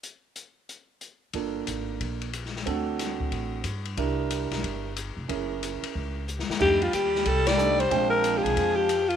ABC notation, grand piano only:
X:1
M:4/4
L:1/8
Q:"Swing" 1/4=183
K:Gm
V:1 name="Grand piano"
z8 | [B,DFA]4- [B,DFA] z3 | [CD^FA]4- [CDFA] z3 | [D=EGB]4- [DEGB] z3 |
[_D_F_AB]4- [DFAB] z3 | [A,DEG] z4 z [A,DEA] z | [_A,CDg]4- [A,CDg] z3 |]